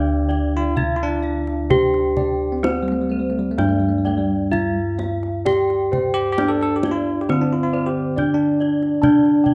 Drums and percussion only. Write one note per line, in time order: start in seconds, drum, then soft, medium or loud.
0.31 kendang slap soft
0.77 kendang low medium
1.23 kendang slap soft
1.47 kendang slap soft
1.70 kendang low medium
1.94 kendang slap soft
2.17 kendang slap soft
2.17 kendang low medium
2.64 kendang high medium
2.88 kendang slap soft
3.58 kendang high medium
4.06 kendang slap soft
4.53 kendang low medium
4.99 kendang slap soft
4.99 kendang high soft
5.23 kendang slap soft
5.46 kendang low medium
5.70 kendang slap soft
5.93 kendang slap soft
5.93 kendang low medium
6.38 kendang high medium
6.61 kendang slap soft
6.83 kendang high medium
7.29 kendang high soft
7.74 kendang slap soft
8.18 kendang low medium
8.62 kendang slap soft
8.82 kendang slap soft
9.03 kendang low medium
9.25 kendang slap soft
9.46 kendang low medium